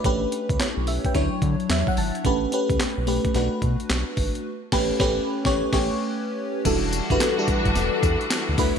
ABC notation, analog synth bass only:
X:1
M:4/4
L:1/16
Q:"Swing 16ths" 1/4=109
K:Edor
V:1 name="Analog synth bass" clef=bass
A,,,2 z C,, B,,, B,,,2 z D,, z D, z E,, z ^G,,, z | A,,,2 z C,, B,,, B,,,2 z B,,, z B,, z B,,, z ^G,,, z | z2 A,,,2 A,,,2 z A,,,2 A,,,2 z4 z | E,,,3 G,,, z2 G,,, G,,, E,,, z E,, z2 D,, D,, z |]